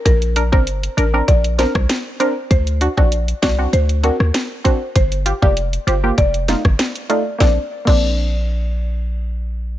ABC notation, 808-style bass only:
X:1
M:4/4
L:1/16
Q:1/4=98
K:Bb
V:1 name="808-style bass" clef=bass
B,,,3 G,,,3 A,,,2 B,,,3 C,, z4 | D,,3 B,,,3 C,,2 D,,3 E,, z4 | G,,,3 F,,,3 G,,,2 F,,,3 G,,, z4 | B,,, z2 B,,,12- B,,, |]